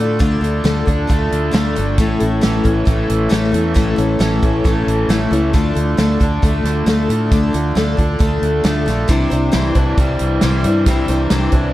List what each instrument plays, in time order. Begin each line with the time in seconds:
Already playing: fingered electric bass A2, overdriven electric guitar A3 D4
0.00 overdriven electric guitar D3, twelve-string acoustic guitar D4 F4 A4
0.19 fingered electric bass D2, twelve-string acoustic guitar D3 A3 D4 F4 A4, kick, closed hi-hat
0.41 fingered electric bass D2, twelve-string acoustic guitar D4 F4 A4, closed hi-hat
0.64 fingered electric bass D2, twelve-string acoustic guitar D3 A3 D4 F4 A4, snare, closed hi-hat
0.85 fingered electric bass D2, twelve-string acoustic guitar D4 F4 A4, kick, closed hi-hat
1.07 fingered electric bass D2, twelve-string acoustic guitar A3 D4 F4 A4, kick, closed hi-hat
1.32 fingered electric bass D2, overdriven electric guitar D3, closed hi-hat
1.51 fingered electric bass D2, twelve-string acoustic guitar D3 A3 D4 F4 A4, snare, closed hi-hat
1.76 fingered electric bass G1, overdriven electric guitar D3, twelve-string acoustic guitar D4 F4 A4, closed hi-hat
1.98 fingered electric bass A1, twelve-string acoustic guitar A2 E3 A3 C#4 E4 A4, kick, closed hi-hat
2.20 fingered electric bass A1, twelve-string acoustic guitar A3 C#4 E4 A4, closed hi-hat
2.41 fingered electric bass A1, twelve-string acoustic guitar A2 E3 A3 C#4 E4 A4, snare, closed hi-hat
2.64 fingered electric bass A1, twelve-string acoustic guitar A3 C#4 E4 A4, kick, closed hi-hat
2.85 fingered electric bass A1, twelve-string acoustic guitar A3 C#4 E4 A4, kick, closed hi-hat
3.09 fingered electric bass A1, overdriven electric guitar E3, closed hi-hat
3.29 fingered electric bass A1, twelve-string acoustic guitar A2 E3 A3 C#4 E4 A4, snare, closed hi-hat
3.44 snare
3.52 fingered electric bass E2, overdriven electric guitar E3, twelve-string acoustic guitar A3 C#4 E4 A4, closed hi-hat
3.74 fingered electric bass A1, twelve-string acoustic guitar A2 E3 A3 C#4 E4 A4, kick, closed hi-hat
3.96 fingered electric bass A1, twelve-string acoustic guitar A3 C#4 E4 A4, closed hi-hat
4.19 fingered electric bass A1, twelve-string acoustic guitar A2 E3 A3 C#4 E4 A4, snare, closed hi-hat
4.42 fingered electric bass A1, twelve-string acoustic guitar A3 C#4 E4 A4, kick, closed hi-hat
4.64 fingered electric bass A1, twelve-string acoustic guitar A3 C#4 E4 A4, kick, closed hi-hat
4.87 fingered electric bass A1, overdriven electric guitar E3, closed hi-hat
5.08 fingered electric bass A1, twelve-string acoustic guitar A2 E3 A3 C#4 E4 A4, snare, closed hi-hat
5.30 fingered electric bass C#2, overdriven electric guitar E3, twelve-string acoustic guitar A3 C#4 E4 A4, closed hi-hat
5.53 fingered electric bass D2, twelve-string acoustic guitar D3 A3 D4 F4 A4, kick, closed hi-hat
5.75 fingered electric bass D2, twelve-string acoustic guitar D4 F4 A4, closed hi-hat
5.97 fingered electric bass D2, twelve-string acoustic guitar D3 A3 D4 F4 A4, snare, closed hi-hat
6.20 fingered electric bass D2, twelve-string acoustic guitar D4 F4 A4, kick, closed hi-hat
6.42 fingered electric bass D2, twelve-string acoustic guitar A3 D4 F4 A4, kick, closed hi-hat
6.64 fingered electric bass D2, overdriven electric guitar D3, snare, closed hi-hat
6.86 fingered electric bass D2, twelve-string acoustic guitar D3 A3 D4 F4 A4, snare, closed hi-hat
7.09 fingered electric bass A2, overdriven electric guitar D3, twelve-string acoustic guitar D4 F4 A4, closed hi-hat
7.31 fingered electric bass D2, twelve-string acoustic guitar D3 A3 D4 F4 A4, kick, closed hi-hat
7.53 fingered electric bass D2, twelve-string acoustic guitar D4 F4 A4, closed hi-hat
7.75 fingered electric bass D2, twelve-string acoustic guitar D3 A3 D4 F4 A4, snare, closed hi-hat
7.97 fingered electric bass D2, twelve-string acoustic guitar D4 F4 A4, kick, closed hi-hat
8.19 fingered electric bass D2, twelve-string acoustic guitar A3 D4 F4 A4, kick, closed hi-hat
8.42 fingered electric bass D2, overdriven electric guitar D3, closed hi-hat
8.64 fingered electric bass D2, twelve-string acoustic guitar D3 A3 D4 F4 A4, snare, closed hi-hat
8.86 fingered electric bass A#1, overdriven electric guitar D3, twelve-string acoustic guitar D4 F4 A4, snare, closed hi-hat
9.08 fingered electric bass C2, twelve-string acoustic guitar C3 E3 G3 D4 E4 C5, kick, closed hi-hat
9.30 fingered electric bass C2, twelve-string acoustic guitar G3 D4 E4 C5, closed hi-hat
9.52 fingered electric bass C2, twelve-string acoustic guitar C3 E3 G3 D4 E4 C5, snare, closed hi-hat
9.75 fingered electric bass C2, twelve-string acoustic guitar G3 D4 E4 C5, kick, closed hi-hat
9.97 fingered electric bass C2, twelve-string acoustic guitar G3 D4 E4 C5, kick, closed hi-hat
10.19 fingered electric bass C2, overdriven electric guitar E3, closed hi-hat
10.41 fingered electric bass C2, twelve-string acoustic guitar C3 E3 G3 D4 E4 C5, snare, closed hi-hat
10.64 fingered electric bass G2, overdriven electric guitar E3, twelve-string acoustic guitar G3 D4 E4 C5, closed hi-hat
10.86 fingered electric bass C2, twelve-string acoustic guitar C3 E3 G3 D4 E4 C5, kick, closed hi-hat
11.08 fingered electric bass C2, twelve-string acoustic guitar G3 D4 E4 C5, closed hi-hat
11.30 fingered electric bass C2, twelve-string acoustic guitar C3 E3 G3 D4 E4 C5, snare, closed hi-hat
11.52 fingered electric bass C2, twelve-string acoustic guitar G3 D4 E4 C5, kick, closed hi-hat